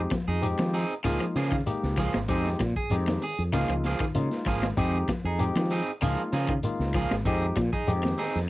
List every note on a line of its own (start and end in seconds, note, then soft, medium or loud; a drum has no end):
0.00 0.13 G#3 medium
0.00 0.13 C4 medium
0.00 0.13 D#4 medium
0.00 0.13 G4 medium
0.11 0.36 F3 medium
0.11 kick medium
0.11 snare medium
0.11 closed hi-hat soft
0.11 shekere soft
0.28 0.53 F2 medium
0.28 0.46 D#4 soft
0.28 0.46 G#4 medium
0.42 0.75 G#3 medium
0.42 0.75 C4 medium
0.42 0.75 D#4 medium
0.42 0.75 G4 loud
0.42 closed hi-hat medium
0.42 shekere medium
0.59 0.83 D#3 medium
0.59 0.84 F3 medium
0.59 snare medium
0.59 closed hi-hat soft
0.73 0.93 C4 medium
0.73 0.93 D#4 medium
0.73 0.93 G#4 medium
0.73 open hi-hat medium
0.73 shekere soft
0.90 closed hi-hat soft
1.04 1.18 C#2 medium
1.04 1.17 C#3 medium
1.04 1.24 F3 medium
1.04 1.38 G#3 medium
1.04 1.37 A#3 medium
1.04 1.24 A#3 medium
1.04 1.38 D#4 medium
1.04 1.24 F4 medium
1.04 1.38 F4 medium
1.04 1.24 G#4 medium
1.04 closed hi-hat medium
1.04 shekere medium
1.20 1.45 F3 medium
1.20 closed hi-hat soft
1.36 1.61 C#3 medium
1.36 1.55 F3 medium
1.36 1.55 A#3 medium
1.36 1.55 F4 medium
1.36 1.55 G#4 medium
1.36 snare soft
1.36 closed hi-hat medium
1.36 shekere soft
1.52 1.76 D#3 medium
1.52 kick medium
1.52 snare soft
1.66 1.99 G#3 medium
1.66 2.00 A#3 medium
1.66 1.99 D#4 medium
1.66 2.00 G4 medium
1.66 closed hi-hat medium
1.66 shekere medium
1.83 2.09 C#2 medium
1.83 snare soft
1.97 2.10 F3 medium
1.97 2.17 F3 medium
1.97 2.17 A#3 medium
1.97 2.17 F4 medium
1.97 2.18 G#4 medium
1.97 kick medium
1.97 snare soft
1.97 closed hi-hat medium
1.97 shekere soft
2.14 2.26 G#1 medium
2.14 2.26 G#3 medium
2.14 snare medium
2.14 closed hi-hat soft
2.28 2.54 F2 loud
2.28 2.61 G#3 medium
2.28 2.61 C4 medium
2.28 2.48 C4 medium
2.28 2.62 D#4 medium
2.28 2.48 D#4 medium
2.28 2.62 G4 loud
2.28 2.49 G#4 medium
2.28 kick medium
2.28 closed hi-hat medium
2.28 shekere medium
2.45 snare soft
2.45 closed hi-hat soft
2.60 2.73 A#2 medium
2.60 2.85 F3 medium
2.60 kick medium
2.60 snare medium
2.60 closed hi-hat medium
2.60 shekere soft
2.76 2.94 G#4 medium
2.76 kick medium
2.76 closed hi-hat soft
2.90 3.16 F2 medium
2.90 3.24 G#3 medium
2.90 3.24 C4 medium
2.90 3.24 D#4 medium
2.90 3.24 G4 medium
2.90 closed hi-hat medium
2.90 shekere medium
3.07 3.32 D#3 medium
3.07 snare medium
3.07 closed hi-hat soft
3.22 3.42 G#4 medium
3.22 muted clean electric guitar stroke medium
3.22 open hi-hat medium
3.22 shekere soft
3.38 3.50 F2 medium
3.38 closed hi-hat soft
3.53 3.66 C#2 medium
3.53 3.66 C#3 medium
3.53 3.73 F3 medium
3.53 3.86 G#3 medium
3.53 3.86 A#3 medium
3.53 3.73 A#3 medium
3.53 3.86 D#4 medium
3.53 3.86 F4 medium
3.53 3.73 F4 medium
3.53 3.73 G#4 medium
3.53 closed hi-hat medium
3.53 shekere medium
3.69 3.94 C#2 medium
3.69 3.94 F3 medium
3.84 4.04 F3 medium
3.84 4.04 A#3 medium
3.84 4.04 F4 medium
3.84 4.04 G#4 medium
3.84 snare soft
3.84 closed hi-hat medium
3.84 shekere soft
4.00 4.25 D#3 medium
4.00 muted fretless electric bass stroke soft
4.00 kick medium
4.00 snare soft
4.00 closed hi-hat soft
4.15 4.28 C#3 medium
4.15 4.48 G#3 medium
4.15 4.48 A#3 medium
4.15 4.48 D#4 medium
4.15 4.48 F4 medium
4.15 closed hi-hat medium
4.15 shekere medium
4.31 snare soft
4.31 closed hi-hat soft
4.46 4.72 G#1 medium
4.46 4.59 F3 medium
4.46 4.65 F3 medium
4.46 4.66 A#3 medium
4.46 4.66 F4 medium
4.46 4.66 G#4 medium
4.46 kick medium
4.46 open hi-hat medium
4.46 shekere soft
4.63 4.75 G#3 medium
4.63 snare medium
4.63 closed hi-hat soft
4.77 5.03 F2 medium
4.77 5.10 G#3 medium
4.77 5.10 C4 medium
4.77 4.97 C4 medium
4.77 5.10 D#4 medium
4.77 4.97 D#4 medium
4.77 5.10 G4 loud
4.77 4.97 G#4 medium
4.77 kick medium
4.77 closed hi-hat medium
4.77 shekere medium
4.94 closed hi-hat soft
5.08 5.33 F3 medium
5.08 kick medium
5.08 snare medium
5.08 closed hi-hat soft
5.08 shekere soft
5.25 5.50 F2 medium
5.25 5.43 D#4 soft
5.25 5.43 G#4 medium
5.39 5.72 G#3 medium
5.39 5.72 C4 medium
5.39 5.72 D#4 medium
5.39 5.73 G4 loud
5.39 closed hi-hat medium
5.39 shekere medium
5.55 5.81 D#3 medium
5.55 5.81 F3 medium
5.55 snare medium
5.55 closed hi-hat soft
5.70 5.90 C4 medium
5.70 5.90 D#4 medium
5.70 5.90 G#4 medium
5.70 open hi-hat medium
5.70 shekere soft
5.86 closed hi-hat soft
6.01 6.15 C#2 medium
6.01 6.15 C#3 medium
6.01 6.21 F3 medium
6.01 6.34 G#3 medium
6.01 6.35 A#3 medium
6.01 6.21 A#3 medium
6.01 6.35 D#4 medium
6.01 6.35 F4 medium
6.01 6.21 F4 medium
6.01 6.21 G#4 medium
6.01 closed hi-hat medium
6.01 shekere medium
6.18 closed hi-hat soft
6.32 6.58 C#3 medium
6.32 6.52 F3 medium
6.32 6.52 A#3 medium
6.32 6.52 F4 medium
6.32 6.52 G#4 medium
6.32 snare soft
6.32 closed hi-hat soft
6.32 shekere soft
6.49 6.73 D#3 medium
6.49 kick medium
6.63 6.97 G#3 medium
6.63 6.97 A#3 medium
6.63 6.97 D#4 medium
6.63 6.97 F4 medium
6.63 closed hi-hat medium
6.63 shekere medium
6.80 7.05 C#2 medium
6.80 snare soft
6.94 7.07 F3 medium
6.94 7.14 F3 medium
6.94 7.14 A#3 medium
6.94 7.14 F4 medium
6.94 7.14 G#4 medium
6.94 kick medium
6.94 closed hi-hat soft
6.94 shekere soft
7.11 7.23 G#1 medium
7.11 7.23 G#3 medium
7.11 snare medium
7.11 closed hi-hat soft
7.25 7.51 F2 loud
7.25 7.59 G#3 medium
7.25 7.45 C4 medium
7.25 7.59 C4 medium
7.25 7.45 D#4 medium
7.25 7.59 D#4 medium
7.25 7.59 G4 loud
7.25 7.45 G#4 medium
7.25 kick medium
7.25 closed hi-hat medium
7.25 shekere medium
7.42 closed hi-hat soft
7.56 7.70 A#2 loud
7.56 7.81 F3 medium
7.56 kick medium
7.56 snare medium
7.56 closed hi-hat soft
7.56 shekere soft
7.73 7.91 D#4 soft
7.73 7.91 G#4 medium
7.73 kick medium
7.73 closed hi-hat soft
7.87 8.13 F2 medium
7.87 8.20 G#3 medium
7.87 8.20 C4 medium
7.87 8.21 D#4 medium
7.87 8.21 G4 loud
7.87 closed hi-hat medium
7.87 shekere medium
8.03 8.28 D#3 medium
8.03 snare medium
8.03 closed hi-hat soft
8.18 8.38 C4 medium
8.18 8.38 D#4 medium
8.18 8.38 G#4 medium
8.18 snare soft
8.18 open hi-hat medium
8.18 shekere soft
8.35 8.47 F2 medium
8.35 snare soft
8.35 closed hi-hat soft